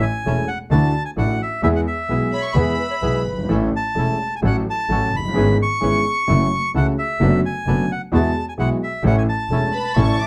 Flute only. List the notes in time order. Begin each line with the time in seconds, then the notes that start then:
2.32 C#5
2.55 B4
2.78 B4
2.90 C#5
3.01 B4
9.73 B4
9.95 C#5
10.07 D5
10.20 E5